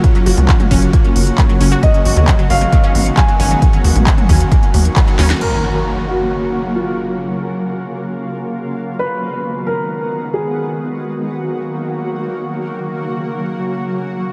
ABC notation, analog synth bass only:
X:1
M:4/4
L:1/16
Q:1/4=134
K:F#
V:1 name="Analog synth bass" clef=bass
z2 F,,, C,, z2 F,,, z3 F,,, z3 F,,, z | z2 G,,, D,, z2 G,,, z3 G,,, z3 G,,, z | z2 D,, A,,, z2 D,, z3 D,, z3 D,, z | z16 |
z16 | z16 | z16 | z16 |]